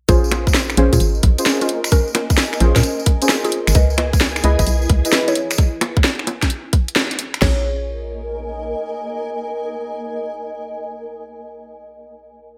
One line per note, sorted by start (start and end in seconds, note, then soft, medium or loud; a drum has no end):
0.09 0.76 A#1 loud
0.09 0.74 C#4 loud
0.09 0.26 F4 medium
0.09 0.75 F4 medium
0.09 0.26 G#4 loud
0.09 0.74 G#4 medium
0.09 3.75 A#4 medium
0.09 0.74 C5 loud
0.09 kick loud
0.09 closed hi-hat medium
0.09 tambourine medium
0.24 tambourine soft
0.32 0.49 F4 medium
0.32 0.49 G#4 medium
0.32 finger snap medium
0.32 open hi-hat loud
0.32 high bongo medium
0.47 kick loud
0.47 tambourine medium
0.51 3.75 D#5 medium
0.51 snare loud
0.51 tambourine medium
0.70 finger snap medium
0.70 tambourine soft
0.76 0.90 A#1 loud
0.76 0.98 C#4 loud
0.76 0.98 F4 medium
0.76 0.98 G#4 medium
0.76 0.98 C5 loud
0.76 5.58 G#5 medium
0.76 open hi-hat loud
0.76 high bongo medium
0.93 0.99 A#2 medium
0.93 1.16 F4 medium
0.93 1.16 G#4 medium
0.93 kick medium
0.93 closed hi-hat medium
0.93 tambourine medium
1.00 1.21 G#1 medium
1.00 closed hi-hat medium
1.00 tambourine medium
1.15 tambourine soft
1.23 1.36 A#1 medium
1.23 kick loud
1.23 open hi-hat loud
1.38 2.59 C#4 medium
1.38 2.59 F4 medium
1.38 2.59 G#4 medium
1.38 2.59 C5 medium
1.38 closed hi-hat medium
1.38 tambourine medium
1.45 snare loud
1.45 open hi-hat medium
1.45 tambourine medium
1.61 1.84 C#4 medium
1.61 1.84 F4 loud
1.61 closed hi-hat medium
1.61 tambourine soft
1.69 open hi-hat loud
1.84 finger snap medium
1.84 closed hi-hat soft
1.84 tambourine medium
1.92 2.10 C#4 medium
1.92 2.10 A#4 loud
1.92 kick loud
1.92 closed hi-hat medium
1.92 tambourine medium
2.08 tambourine soft
2.15 2.33 C#4 medium
2.15 2.33 A#4 medium
2.15 finger snap medium
2.15 open hi-hat loud
2.15 high bongo medium
2.30 kick loud
2.30 tambourine medium
2.37 snare loud
2.37 tambourine medium
2.53 finger snap medium
2.53 tambourine soft
2.60 2.74 A#1 loud
2.60 2.81 C#4 loud
2.60 2.81 F4 medium
2.60 2.81 G#4 medium
2.60 2.81 C5 loud
2.60 open hi-hat loud
2.60 high bongo medium
2.76 2.82 A#2 medium
2.76 2.99 C#4 medium
2.76 2.99 A#4 medium
2.76 kick medium
2.76 snare medium
2.76 closed hi-hat medium
2.76 tambourine medium
2.83 closed hi-hat medium
2.83 tambourine medium
3.00 tambourine soft
3.06 kick loud
3.06 open hi-hat loud
3.22 3.74 C#4 medium
3.22 3.74 F4 medium
3.22 3.74 G#4 medium
3.22 3.74 C5 medium
3.22 closed hi-hat medium
3.22 tambourine medium
3.29 snare loud
3.29 tambourine medium
3.44 3.67 F4 medium
3.44 3.67 G#4 loud
3.44 closed hi-hat medium
3.44 tambourine soft
3.52 open hi-hat loud
3.67 3.74 G#1 medium
3.67 finger snap medium
3.67 open hi-hat medium
3.67 tambourine medium
3.75 4.42 C#2 loud
3.75 5.60 G#4 medium
3.75 5.58 B4 medium
3.75 3.93 B4 medium
3.75 3.93 D#5 loud
3.75 5.60 G#5 medium
3.75 kick loud
3.75 closed hi-hat medium
3.75 tambourine medium
3.83 5.58 E4 medium
3.90 tambourine soft
3.98 4.16 B4 medium
3.98 4.16 D#5 medium
3.98 finger snap medium
3.98 open hi-hat loud
3.98 high bongo medium
4.13 kick loud
4.13 tambourine medium
4.21 snare loud
4.21 tambourine medium
4.36 finger snap medium
4.36 tambourine soft
4.44 4.57 C#2 loud
4.44 4.64 E4 loud
4.44 4.64 G#4 medium
4.44 4.64 B4 medium
4.44 4.64 D#5 loud
4.44 open hi-hat loud
4.44 high bongo medium
4.59 4.66 G#1 medium
4.59 4.82 B4 medium
4.59 4.82 D#5 medium
4.59 kick medium
4.59 closed hi-hat medium
4.59 tambourine medium
4.67 4.87 B1 medium
4.67 closed hi-hat medium
4.67 tambourine medium
4.82 tambourine soft
4.90 5.03 C#2 medium
4.90 kick loud
4.90 open hi-hat loud
5.05 5.81 E4 medium
5.05 5.81 G#4 medium
5.05 5.81 B4 medium
5.05 5.81 D#5 medium
5.05 closed hi-hat medium
5.05 tambourine medium
5.12 snare loud
5.12 open hi-hat medium
5.12 tambourine medium
5.28 5.51 E4 medium
5.28 5.51 C#5 medium
5.28 closed hi-hat medium
5.28 tambourine soft
5.35 open hi-hat loud
5.51 finger snap medium
5.51 closed hi-hat soft
5.51 tambourine medium
5.58 kick loud
5.58 closed hi-hat medium
5.81 finger snap medium
5.81 open hi-hat loud
5.81 high bongo medium
5.97 kick loud
6.04 snare loud
6.19 finger snap medium
6.27 open hi-hat loud
6.27 high bongo medium
6.42 kick medium
6.42 snare medium
6.42 closed hi-hat medium
6.50 closed hi-hat medium
6.73 kick loud
6.73 open hi-hat loud
6.88 closed hi-hat medium
6.96 snare loud
7.11 closed hi-hat medium
7.19 open hi-hat loud
7.34 finger snap medium
7.34 open hi-hat medium
7.41 8.75 A#1 loud
7.41 11.64 C#4 medium
7.41 11.64 F4 medium
7.41 11.64 G#4 medium
7.41 11.64 A#4 medium
7.41 11.64 C#5 medium
7.41 11.64 C#5 loud
7.41 kick loud
7.41 snare loud
7.41 crash medium
7.50 11.73 D#5 medium
7.58 11.80 G#5 medium